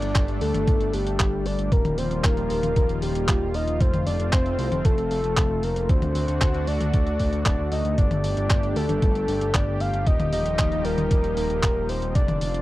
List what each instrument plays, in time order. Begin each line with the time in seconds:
Already playing: analog synth pad G3 A3 D4, soft synth lead D5
0.02 analog synth bass G1, closed hi-hat
0.15 analog synth bass G1, kick, clap, closed hi-hat
0.28 analog synth bass G1, closed hi-hat
0.41 analog synth bass D2, soft synth lead A4, open hi-hat
0.54 analog synth bass G1, closed hi-hat, high tom
0.67 analog synth bass G1, kick, closed hi-hat
0.81 analog synth bass G1, closed hi-hat
0.94 analog synth bass G1, soft synth lead G4, open hi-hat
1.07 analog synth bass G1, closed hi-hat
1.20 analog synth bass G1, kick, clap, closed hi-hat
1.33 analog synth bass G1
1.46 analog synth bass G1, soft synth lead D5, open hi-hat
1.59 analog synth bass G1, closed hi-hat
1.72 analog synth bass D#1, analog synth pad D#3 F3 A#3 F4, soft synth lead A#4, kick, closed hi-hat
1.85 analog synth bass D#1, closed hi-hat, high tom
1.98 analog synth bass D#1, soft synth lead C5, open hi-hat
2.11 analog synth bass D#1, closed hi-hat
2.24 analog synth bass D#1, soft synth lead A#4, kick, clap, closed hi-hat
2.37 analog synth bass D#1, closed hi-hat
2.50 analog synth bass D#1, soft synth lead A#4, open hi-hat
2.63 analog synth bass D#1, closed hi-hat, high tom
2.76 analog synth bass D#1, soft synth lead A#4, kick, closed hi-hat
2.89 analog synth bass D#1, closed hi-hat
3.02 analog synth bass D#1, soft synth lead G4, open hi-hat
3.15 analog synth bass D#1, closed hi-hat
3.28 analog synth bass D#1, kick, clap, closed hi-hat
3.41 analog synth bass D#1
3.54 analog synth bass D#1, soft synth lead D#5, open hi-hat
3.67 analog synth bass D#1, closed hi-hat
3.80 analog synth bass F1, analog synth pad A3 C4, soft synth lead C5, kick, closed hi-hat
3.94 analog synth bass F1, closed hi-hat, high tom
4.07 analog synth bass F1, soft synth lead D5, open hi-hat
4.20 analog synth bass F1, closed hi-hat
4.33 analog synth bass F1, soft synth lead C5, kick, clap, closed hi-hat
4.46 analog synth bass F1, closed hi-hat
4.59 analog synth bass C2, soft synth lead C5, open hi-hat
4.72 analog synth bass F1, closed hi-hat, high tom
4.85 analog synth bass F1, soft synth lead A4, kick, closed hi-hat
4.98 analog synth bass F1, closed hi-hat
5.11 analog synth bass F1, soft synth lead A4, open hi-hat
5.24 analog synth bass F1, closed hi-hat
5.37 analog synth bass F1, kick, clap, closed hi-hat
5.50 analog synth bass F1
5.63 analog synth bass F1, soft synth lead A#4, open hi-hat
5.76 analog synth bass F1, closed hi-hat
5.89 analog synth bass D2, analog synth pad D4 F#4, soft synth lead C5, kick, closed hi-hat
6.02 analog synth bass D2, closed hi-hat, high tom
6.15 analog synth bass D2, open hi-hat
6.28 analog synth bass D2, closed hi-hat
6.41 analog synth bass D2, kick, clap, closed hi-hat
6.54 analog synth bass D2, closed hi-hat
6.67 analog synth bass D2, soft synth lead D5, open hi-hat
6.81 analog synth bass D2, closed hi-hat, high tom
6.94 analog synth bass D2, soft synth lead D5, kick, closed hi-hat
7.07 analog synth bass D2, closed hi-hat
7.20 analog synth bass D2, kick, open hi-hat
7.33 analog synth bass D2, closed hi-hat
7.46 analog synth bass D1, soft synth lead D5, kick, clap, closed hi-hat
7.59 analog synth bass D2
7.72 analog synth bass D2, soft synth lead D#5, open hi-hat
7.85 analog synth bass D2, closed hi-hat
7.98 analog synth bass G1, analog synth pad D4 G4, soft synth lead D5, kick, closed hi-hat
8.11 analog synth bass G1, closed hi-hat, high tom
8.24 analog synth bass G1, soft synth lead D5, open hi-hat
8.37 analog synth bass G1, closed hi-hat
8.50 analog synth bass G1, kick, clap, closed hi-hat
8.63 analog synth bass G1, closed hi-hat
8.76 analog synth bass D2, soft synth lead A4, open hi-hat
8.89 analog synth bass G1, closed hi-hat, high tom
9.02 analog synth bass G1, kick, closed hi-hat
9.15 analog synth bass G1, closed hi-hat
9.28 analog synth bass G1, open hi-hat
9.41 analog synth bass G1, closed hi-hat
9.54 analog synth bass G1, soft synth lead D5, kick, clap, closed hi-hat
9.67 analog synth bass G1
9.80 analog synth bass G1, soft synth lead F5, open hi-hat
9.93 analog synth bass G1, closed hi-hat
10.07 analog synth bass D#1, analog synth pad F3 G3 A#3 D#4, soft synth lead D#5, kick, closed hi-hat
10.20 analog synth bass D#1, closed hi-hat, high tom
10.33 analog synth bass D#1, soft synth lead D#5, open hi-hat
10.46 analog synth bass D#1, closed hi-hat
10.59 analog synth bass D#1, kick, clap, closed hi-hat
10.72 analog synth bass D#1, closed hi-hat
10.85 analog synth bass D#1, soft synth lead A#4, open hi-hat
10.98 analog synth bass D#1, closed hi-hat, high tom
11.11 analog synth bass D#1, kick, closed hi-hat
11.24 analog synth bass D#1, closed hi-hat
11.37 analog synth bass D#1, soft synth lead A#4, open hi-hat
11.50 analog synth bass D#1, closed hi-hat
11.63 analog synth bass D#1, kick, clap, closed hi-hat
11.76 analog synth bass D#1
11.89 analog synth bass D#1, soft synth lead C5, open hi-hat
12.02 analog synth bass D#1, closed hi-hat
12.15 analog synth bass F1, analog synth pad C4 F4, soft synth lead D5, kick, closed hi-hat
12.28 analog synth bass F1, closed hi-hat, high tom
12.41 analog synth bass F1, soft synth lead D5, open hi-hat
12.54 analog synth bass F1, closed hi-hat